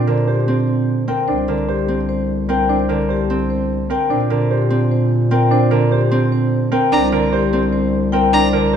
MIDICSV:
0, 0, Header, 1, 6, 480
1, 0, Start_track
1, 0, Key_signature, -2, "major"
1, 0, Tempo, 402685
1, 1531, Time_signature, 7, 3, 24, 8
1, 10449, End_track
2, 0, Start_track
2, 0, Title_t, "Violin"
2, 0, Program_c, 0, 40
2, 8251, Note_on_c, 0, 82, 78
2, 8431, Note_off_c, 0, 82, 0
2, 9932, Note_on_c, 0, 82, 80
2, 10111, Note_off_c, 0, 82, 0
2, 10449, End_track
3, 0, Start_track
3, 0, Title_t, "Vibraphone"
3, 0, Program_c, 1, 11
3, 0, Note_on_c, 1, 72, 62
3, 166, Note_off_c, 1, 72, 0
3, 333, Note_on_c, 1, 67, 51
3, 643, Note_off_c, 1, 67, 0
3, 809, Note_on_c, 1, 72, 46
3, 1122, Note_off_c, 1, 72, 0
3, 1290, Note_on_c, 1, 79, 61
3, 1523, Note_on_c, 1, 72, 62
3, 1602, Note_off_c, 1, 79, 0
3, 1840, Note_off_c, 1, 72, 0
3, 2011, Note_on_c, 1, 67, 52
3, 2323, Note_off_c, 1, 67, 0
3, 2491, Note_on_c, 1, 72, 54
3, 2803, Note_off_c, 1, 72, 0
3, 2978, Note_on_c, 1, 79, 65
3, 3214, Note_on_c, 1, 72, 65
3, 3285, Note_off_c, 1, 79, 0
3, 3524, Note_off_c, 1, 72, 0
3, 3700, Note_on_c, 1, 67, 55
3, 4006, Note_off_c, 1, 67, 0
3, 4173, Note_on_c, 1, 72, 50
3, 4483, Note_off_c, 1, 72, 0
3, 4659, Note_on_c, 1, 79, 67
3, 4894, Note_on_c, 1, 72, 68
3, 4965, Note_off_c, 1, 79, 0
3, 5204, Note_off_c, 1, 72, 0
3, 5378, Note_on_c, 1, 67, 55
3, 5685, Note_off_c, 1, 67, 0
3, 5858, Note_on_c, 1, 72, 54
3, 6165, Note_off_c, 1, 72, 0
3, 6335, Note_on_c, 1, 79, 68
3, 6575, Note_on_c, 1, 72, 72
3, 6644, Note_off_c, 1, 79, 0
3, 6884, Note_off_c, 1, 72, 0
3, 7061, Note_on_c, 1, 67, 59
3, 7366, Note_off_c, 1, 67, 0
3, 7536, Note_on_c, 1, 72, 56
3, 7844, Note_off_c, 1, 72, 0
3, 8014, Note_on_c, 1, 79, 75
3, 8254, Note_on_c, 1, 72, 70
3, 8324, Note_off_c, 1, 79, 0
3, 8564, Note_off_c, 1, 72, 0
3, 8736, Note_on_c, 1, 67, 63
3, 9044, Note_off_c, 1, 67, 0
3, 9210, Note_on_c, 1, 72, 62
3, 9522, Note_off_c, 1, 72, 0
3, 9684, Note_on_c, 1, 79, 74
3, 9931, Note_on_c, 1, 72, 73
3, 10000, Note_off_c, 1, 79, 0
3, 10243, Note_off_c, 1, 72, 0
3, 10409, Note_on_c, 1, 67, 59
3, 10449, Note_off_c, 1, 67, 0
3, 10449, End_track
4, 0, Start_track
4, 0, Title_t, "Grand piano"
4, 0, Program_c, 2, 0
4, 0, Note_on_c, 2, 62, 66
4, 87, Note_on_c, 2, 70, 56
4, 161, Note_off_c, 2, 62, 0
4, 327, Note_on_c, 2, 72, 48
4, 401, Note_off_c, 2, 70, 0
4, 641, Note_off_c, 2, 72, 0
4, 1287, Note_on_c, 2, 70, 58
4, 1529, Note_on_c, 2, 62, 63
4, 1601, Note_off_c, 2, 70, 0
4, 1770, Note_on_c, 2, 70, 60
4, 1842, Note_off_c, 2, 62, 0
4, 2009, Note_on_c, 2, 72, 52
4, 2082, Note_off_c, 2, 70, 0
4, 2322, Note_off_c, 2, 72, 0
4, 2965, Note_on_c, 2, 70, 58
4, 3206, Note_on_c, 2, 62, 60
4, 3280, Note_off_c, 2, 70, 0
4, 3443, Note_on_c, 2, 70, 64
4, 3521, Note_off_c, 2, 62, 0
4, 3681, Note_on_c, 2, 72, 54
4, 3760, Note_off_c, 2, 70, 0
4, 3999, Note_off_c, 2, 72, 0
4, 4646, Note_on_c, 2, 70, 58
4, 4887, Note_on_c, 2, 62, 65
4, 4961, Note_off_c, 2, 70, 0
4, 5129, Note_on_c, 2, 70, 62
4, 5201, Note_off_c, 2, 62, 0
4, 5371, Note_on_c, 2, 72, 55
4, 5442, Note_off_c, 2, 70, 0
4, 5683, Note_off_c, 2, 72, 0
4, 6332, Note_on_c, 2, 70, 63
4, 6566, Note_on_c, 2, 62, 74
4, 6643, Note_off_c, 2, 70, 0
4, 6805, Note_on_c, 2, 70, 69
4, 6881, Note_off_c, 2, 62, 0
4, 7049, Note_on_c, 2, 72, 58
4, 7121, Note_off_c, 2, 70, 0
4, 7362, Note_off_c, 2, 72, 0
4, 8005, Note_on_c, 2, 70, 70
4, 8250, Note_on_c, 2, 62, 77
4, 8321, Note_off_c, 2, 70, 0
4, 8492, Note_on_c, 2, 70, 75
4, 8562, Note_off_c, 2, 62, 0
4, 8733, Note_on_c, 2, 72, 64
4, 8803, Note_off_c, 2, 70, 0
4, 9043, Note_off_c, 2, 72, 0
4, 9690, Note_on_c, 2, 70, 72
4, 9931, Note_on_c, 2, 62, 77
4, 10002, Note_off_c, 2, 70, 0
4, 10168, Note_on_c, 2, 70, 77
4, 10242, Note_off_c, 2, 62, 0
4, 10410, Note_on_c, 2, 72, 62
4, 10449, Note_off_c, 2, 70, 0
4, 10449, Note_off_c, 2, 72, 0
4, 10449, End_track
5, 0, Start_track
5, 0, Title_t, "Harp"
5, 0, Program_c, 3, 46
5, 0, Note_on_c, 3, 60, 62
5, 88, Note_on_c, 3, 50, 52
5, 556, Note_off_c, 3, 60, 0
5, 571, Note_on_c, 3, 60, 66
5, 1269, Note_off_c, 3, 60, 0
5, 1283, Note_on_c, 3, 60, 58
5, 1548, Note_off_c, 3, 50, 0
5, 1764, Note_on_c, 3, 50, 52
5, 2232, Note_off_c, 3, 60, 0
5, 2246, Note_on_c, 3, 60, 61
5, 2951, Note_off_c, 3, 60, 0
5, 2966, Note_on_c, 3, 60, 68
5, 3434, Note_off_c, 3, 50, 0
5, 3448, Note_on_c, 3, 50, 51
5, 3919, Note_off_c, 3, 60, 0
5, 3933, Note_on_c, 3, 60, 67
5, 4638, Note_off_c, 3, 60, 0
5, 4652, Note_on_c, 3, 60, 65
5, 4908, Note_off_c, 3, 50, 0
5, 5129, Note_on_c, 3, 50, 52
5, 5593, Note_off_c, 3, 60, 0
5, 5607, Note_on_c, 3, 60, 70
5, 6315, Note_off_c, 3, 60, 0
5, 6329, Note_on_c, 3, 60, 71
5, 6794, Note_off_c, 3, 50, 0
5, 6808, Note_on_c, 3, 50, 58
5, 7274, Note_off_c, 3, 60, 0
5, 7288, Note_on_c, 3, 60, 75
5, 7993, Note_off_c, 3, 60, 0
5, 8007, Note_on_c, 3, 60, 72
5, 8268, Note_off_c, 3, 50, 0
5, 8488, Note_on_c, 3, 50, 63
5, 8960, Note_off_c, 3, 60, 0
5, 8974, Note_on_c, 3, 60, 78
5, 9680, Note_off_c, 3, 60, 0
5, 9694, Note_on_c, 3, 60, 74
5, 10155, Note_off_c, 3, 50, 0
5, 10170, Note_on_c, 3, 50, 68
5, 10449, Note_off_c, 3, 50, 0
5, 10449, Note_off_c, 3, 60, 0
5, 10449, End_track
6, 0, Start_track
6, 0, Title_t, "Bass clarinet"
6, 0, Program_c, 4, 71
6, 0, Note_on_c, 4, 46, 63
6, 1389, Note_off_c, 4, 46, 0
6, 1534, Note_on_c, 4, 36, 58
6, 4749, Note_off_c, 4, 36, 0
6, 4890, Note_on_c, 4, 46, 62
6, 8107, Note_off_c, 4, 46, 0
6, 8254, Note_on_c, 4, 36, 68
6, 10449, Note_off_c, 4, 36, 0
6, 10449, End_track
0, 0, End_of_file